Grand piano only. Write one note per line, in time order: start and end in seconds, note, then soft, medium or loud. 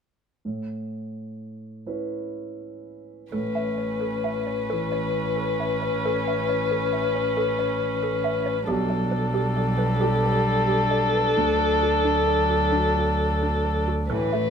0.45 1.82 A2 soft
1.86 3.29 C#4 soft
1.86 3.29 E4 soft
1.86 3.29 B4 soft
3.33 6.01 A2 soft
4.72 8.69 E3 soft
8.68 11.33 B1 medium
10.02 11.34 G4 soft
10.02 11.34 A4 soft
11.37 14.06 D2 soft
12.74 14.07 F#4 soft
12.74 14.07 A4 soft
14.12 14.50 A1 medium